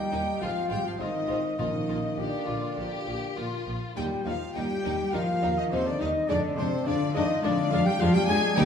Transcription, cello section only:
Already playing: G3
0.42 F3
0.72 G3
0.86 F3
1.00 D#3
1.59 D#3
2.18 D3
3.97 G3
4.26 F3
4.56 G3
5.14 F3
5.58 D#3
5.72 C3
5.87 D3
6.01 D#3
6.30 D3
6.58 C3
6.87 D3
7.16 D#3
7.44 D3
7.72 F3
7.87 G3
8.01 F3
8.15 G3
8.29 G#3
8.57 G3

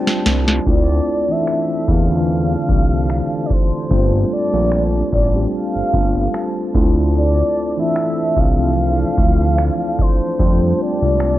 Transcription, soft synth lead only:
0.69 D5
1.31 E5
1.90 F5
3.46 D5
3.52 C5
4.33 D5
5.14 D5
5.55 F5
7.17 D5
7.80 E5
8.39 F5
10.01 C5
10.82 D5

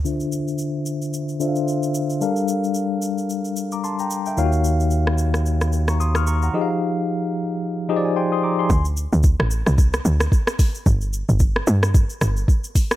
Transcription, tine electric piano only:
0.05 D3 D4 F4 C5 E5
1.40 D3 D4 F4 C5 E5
1.48 F5
2.21 G3 D4 A4 A#4 F5
3.72 A#5 D6
3.84 A5 C6
3.99 G5 A#5
4.27 E5 G5
4.37 D#3 D#4 F4 C#5 F5
4.44 F#4
5.89 A#5 C#6
6.00 C6 D#6
6.16 C#6 F6
6.27 A#5 C#6
6.43 F#5 A#5
6.53 F3 D#4 G4 G#4 D#5
6.61 F5
7.88 F3 D#4 G4 G#4 C5 D#5
7.96 D5
8.05 G#5
8.16 G5 G#5 C6
8.32 C6 D#6
8.43 A#5 D6
8.59 G#5 C6

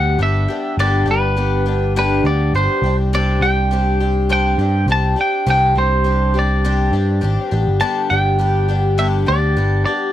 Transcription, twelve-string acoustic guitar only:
Already playing: G3 B3 D4 G4
0.19 G3 B3 D4 G4
0.48 G3 B3 D4 G4
0.79 G2 D3 G3 B3 D4 G4
1.06 G3 B3 D4 G4
1.36 G3 B3 D4 G4
1.66 G3 B3 D4 G4
1.96 G2 D3 G3 B3 D4 G4
2.25 G3 B3 D4 G4
2.54 G3 B3 D4 G4
2.84 C4 D4 G4
3.13 C3 G3 C4 D4 G4
3.42 C4 D4 G4
3.71 G3 C4 D4 G4
4.00 C4 D4 G4
4.29 C3 G3 C4 D4 G4
4.59 C4 D4 G4
4.88 G3 C4 D4 G4
5.16 C4 D4 G4
5.46 C3 G3 C4 D4 G4
5.75 C4 D4 G4
6.04 G3 C4 D4 G4
6.34 C4 D4 G4
6.64 C3 G3 C4 D4 G4
6.93 C4 D4 G4
7.21 G3 C4 D4 G4
7.51 G3 B3 D4 G4
7.80 G2 D3 G3 B3 D4 G4
8.10 G3 B3 D4 G4
8.39 G3 B3 D4 G4
8.68 G3 B3 D4 G4
8.98 G2 D3 G3 B3 D4 G4
9.26 G3 B3 D4 G4
9.56 G3 B3 D4 G4
9.86 G3 B3 D4 G4

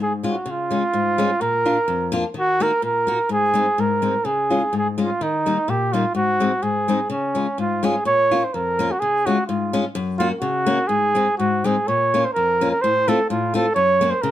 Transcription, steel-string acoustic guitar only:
Already playing: G#2
0.23 G#3 C#4 F4
0.46 C#3
0.70 G#3 C#4 F4
0.93 G#2
1.18 G#3 C#4 F4
1.41 A#2
1.65 A#3 D4 F4
1.88 F2
2.12 A#3 D4 F4
2.34 D#3
2.60 A#3 D#4 F#4
2.82 A#2
3.07 A#3 D#4 F#4
3.29 G#2
3.54 G#3 C4 D#4
3.78 G#2
4.02 G#3 C4 D#4
4.25 C#3
4.50 G#3 C#4 F4
4.73 G#2
4.98 G#3 C#4 F4
5.21 D#3
5.46 G3 A#3 D#4
5.68 A#2
5.93 G3 A#3 D#4
6.15 G#2
6.40 G#3 C4 D#4
6.63 G#2
6.88 G#3 C4 D#4
7.10 C#3
7.35 G#3 C#4 F4
7.58 G#2
7.83 G#3 C#4 F4
8.05 A#2
8.31 A#3 C#4 F4
8.54 F2
8.79 A#3 C#4 F4
9.02 C#3
9.26 G#3 C#4 F4
9.49 G#2
9.73 G#3 C#4 F4
9.95 F#2
10.20 A#3 C#4 F#4
10.42 C#3
10.66 A#3 C#4 F#4
10.89 G#2
11.15 G#3 C4 D#4
11.39 G#2
11.64 G#3 C4 D#4
11.88 A#2
12.14 A#3 C#4 F4
12.36 F2
12.61 A#3 C#4 F4
12.84 A2
13.08 A3 C4 F4
13.30 A2
13.54 A3 C4 F4
13.76 F#2
14.01 A#3 C#4 F#4
14.23 C#3

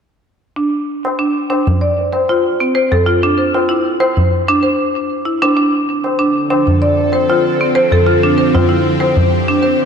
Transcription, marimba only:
0.56 D4
1.19 D4
1.50 D4
1.81 D5
2.13 C5
2.29 F4
2.60 C4
2.75 C5
2.92 A4
3.06 F4
3.23 D4
3.38 C5
3.54 F4
3.69 E4
4.00 C5
4.48 D4
4.63 C5
5.25 E4
5.42 D4
5.57 D4
6.19 D4
6.50 D4
6.82 D5
7.13 C5
7.30 F4
7.61 C4
7.75 C5
7.92 A4
8.07 F4
8.23 D4
8.38 C5
8.55 F4
8.69 E4
9.00 C5
9.48 D4
9.63 C5

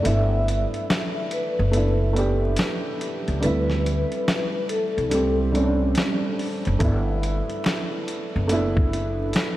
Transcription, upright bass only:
0.06 G1
1.59 F#1
3.28 C#2
3.44 D2
4.98 C2
6.67 F#1
6.81 G1
8.36 F#1

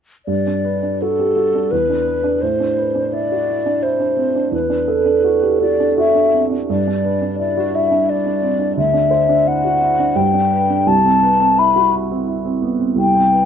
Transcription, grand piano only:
0.27 G2
0.47 D4
0.65 B4
0.83 D4
1.02 F#4
1.19 G4
1.36 F#4
1.55 D4
1.72 E2
1.90 D4
2.07 B4
2.24 D4
2.42 A2
2.60 D4
2.77 B4
2.95 D4
3.13 E4
3.32 F#4
3.49 E4
3.66 D4
3.82 E4
4.00 D4
4.17 C4
4.35 D4
4.52 E2
4.70 D4
4.88 A4
5.06 D4
5.24 F#4
5.42 G4
5.61 F#4
5.80 D4
5.98 F#4
6.15 D4
6.34 C4
6.51 D4
6.70 G2
6.87 D4
7.04 B4
7.22 D4
7.39 E4
7.57 F#4
7.74 E4
7.91 D4
8.09 E4
8.26 D4
8.42 C4
8.59 D4
8.77 D2
8.94 D4
9.11 C5
9.29 D4
9.47 E4
9.64 F#4
9.82 E4
9.99 D4
10.16 G2
10.34 D4
10.52 B4
10.70 D4
10.87 C2
11.05 C4
11.23 B4
11.40 C4
11.59 E4
11.76 F#4
11.93 E4
12.11 C4
12.27 E4
12.45 C4
12.62 B3
12.79 C4
12.96 C2
13.14 C4
13.32 B4

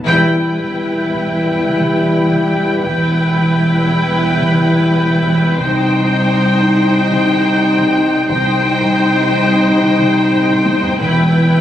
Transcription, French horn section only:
0.08 G3 E4
2.82 G3 E4
5.58 G3 D#4
8.29 G3 D#4
10.99 G3 E4

